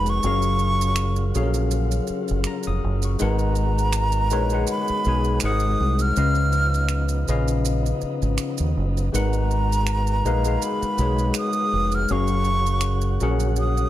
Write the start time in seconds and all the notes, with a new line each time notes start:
Already playing: F1 G#3 B3 D#4 F#4 G#4 A#4 B4 C#5 F#5 G#5 B5
0.06 C#6, maracas
0.23 F#1 C#3 F#3 C#4 F4 G#4 A#4 F5, maracas
0.42 maracas
0.59 maracas
0.81 maracas
0.96 finger snap, maracas
1.16 maracas
1.35 A#1 F#3 C#4 G#4 A4 F5, maracas
1.43 A#4
1.54 maracas
1.71 maracas
1.91 maracas
2.07 muted fingered electric bass stroke, maracas
2.28 F#1, maracas
2.44 A#5, finger snap, maracas
2.63 maracas
2.67 F1 D#6
2.84 F#1
3.02 C#6, maracas
3.18 G#1 G#3 B3 D#4 F#4 A#4 B4 F#5, maracas
3.23 A#5
3.39 maracas
3.55 maracas
3.78 maracas
3.93 finger snap, maracas
4.12 maracas
4.30 A#1 G#3 D#4 A#4 B4 C#5, maracas
4.50 G#3 D#4 G#4 B4, maracas
4.54 F#5
4.67 B5, maracas
4.88 muted fingered electric bass stroke, maracas
5.04 B1 G#3 D#4 G#4 B4, maracas
5.09 G#5
5.24 maracas
5.40 G#1 C3 G#3, finger snap, maracas
5.44 D#4 A#4 C5 F#5 D#6
5.60 maracas
5.80 C2
5.99 F6, maracas
6.16 C#2 C#3 F3 B3 C#4 D#4 B4 D#5 F5, maracas
6.35 maracas
6.52 maracas
6.74 maracas
6.88 finger snap, maracas
7.08 maracas
7.28 A#1 C#3 C#4 B4 D#5 F5, maracas
7.48 maracas
7.65 maracas
7.86 maracas
8.01 muted fingered electric bass stroke, maracas
8.22 G#1, maracas
8.38 finger snap, maracas
8.58 D#2, maracas
8.77 F#1
8.97 maracas
9.12 G#1 G#3 B3 D#4 F#4 A#4 B4 F#5, maracas
9.17 A#5
9.33 maracas
9.51 maracas
9.72 maracas
9.87 finger snap, maracas
10.07 maracas
10.25 A#1 G#3 D#4 A#4 B4 F5, maracas
10.44 G#3 D#4 G#4 B4 F5, maracas
10.62 B5, maracas
10.82 muted fingered electric bass stroke, maracas
10.98 B1 G#3 D#4 G#4 B4 C#5, maracas
11.19 maracas
11.34 finger snap, maracas
11.38 D#6
11.53 maracas
11.73 F1
11.92 F6, maracas
12.08 F#1 C#3 F#3 C#4 F#4 G#4 A#4 C#6, maracas
12.12 F5
12.27 maracas
12.44 maracas
12.66 maracas
12.81 finger snap, maracas
13.01 maracas
13.20 A#1 F#3 C#4 G#4 A#4 F#5, maracas
13.40 maracas
13.56 D#6, maracas
13.77 maracas